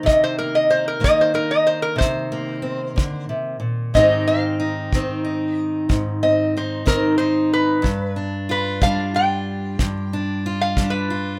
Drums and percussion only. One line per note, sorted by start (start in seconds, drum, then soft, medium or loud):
0.07 kick medium
1.04 kick medium
2.01 kick medium
2.98 kick medium
3.95 kick medium
4.93 kick medium
5.90 kick medium
6.87 kick medium
7.84 kick medium
8.82 kick medium
9.79 kick medium
10.77 kick medium